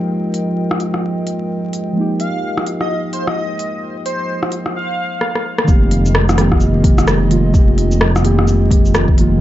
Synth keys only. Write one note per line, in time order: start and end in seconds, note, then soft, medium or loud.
0.00 1.92 F3 medium
0.00 1.94 G#3 medium
0.00 1.95 A#3 medium
0.00 1.96 D#4 medium
0.00 1.97 G4 medium
1.93 4.74 F3 medium
1.93 4.75 G#3 medium
1.93 4.76 A#3 medium
1.99 4.77 D#4 medium
1.99 4.78 G4 medium
5.64 6.34 D#3 medium
5.64 6.35 G#3 medium
5.69 6.36 A#3 medium
5.69 6.38 G4 medium
6.35 6.80 D#3 loud
6.35 6.82 G#3 medium
6.35 6.83 A#3 medium
6.35 6.83 G4 loud
6.82 7.27 D#3 medium
6.82 7.28 G#3 medium
6.82 7.29 A#3 medium
6.86 7.30 G4 medium
7.28 7.49 D#3 loud
7.28 7.52 G#3 medium
7.28 7.52 A#3 medium
7.28 7.53 F4 loud
7.50 8.20 D#3 medium
7.50 8.21 G#3 medium
7.56 8.23 A#3 medium
7.56 8.24 G4 medium
8.22 8.68 D#3 medium
8.22 8.68 G#3 medium
8.22 8.69 A#3 medium
8.22 8.70 G4 loud
8.69 9.14 D#3 medium
8.69 9.15 G#3 medium
8.69 9.15 A#3 medium
8.69 9.16 G4 loud
9.16 9.37 D#3 medium
9.16 9.38 G#3 medium
9.16 9.39 A#3 medium
9.20 9.40 F4 loud